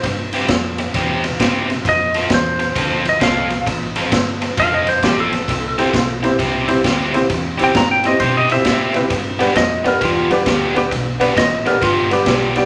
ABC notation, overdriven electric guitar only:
X:1
M:4/4
L:1/8
Q:"Swing" 1/4=132
K:C
V:1 name="Overdriven electric guitar"
z [C,CEG] z2 [C,CEG] z [C,CEG] z | z [F,CFA] z2 [F,CFA] z [F,CFA] z | z [F,CFA] z2 [F,CFA] z [F,CFA] z | z [C,CEG] z2 [C,CEG] z [C,CEG] z |
z [C,CEG] z2 [C,CEG] z [C,CEG] z | z [G,B,DG] z2 [G,B,DG] z [G,B,DG] z | z [G,B,DG] z2 [G,B,DG] z [G,B,DG] z |]